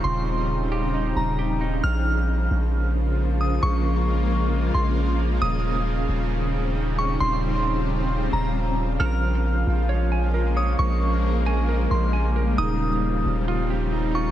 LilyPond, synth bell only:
\new Staff \with { instrumentName = "Synth bell" } { \time 4/4 \key bes \dorian \tempo 4 = 134 c'''2~ c'''8 bes''4. | f'''2.~ f'''8 ees'''8 | des'''2~ des'''8 c'''8 r4 | ees'''2.~ ees'''8 des'''8 |
c'''2~ c'''8 bes''4. | f'''2.~ f'''8 ees'''8 | des'''2~ des'''8 c'''8 r4 | ees'''2.~ ees'''8 des'''8 | }